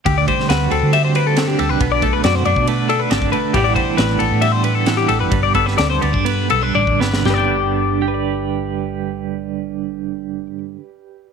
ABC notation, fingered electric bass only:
X:1
M:4/4
L:1/16
Q:1/4=131
K:G
V:1 name="Fingered electric bass" clef=bass
D,,2 z2 D,,2 D,, D,6- D, D,, C,, | B,,,4 F,,2 F,, B,,4- B,, _A,,,2 z2 | A,,,2 z2 A,,,2 A,,, A,,6- A,, A,,, F,,, | G,,,4 D,,2 D,, G,,3 B,,,2 A,,,2 G,,,2 |
G,,,16- | G,,,16 |]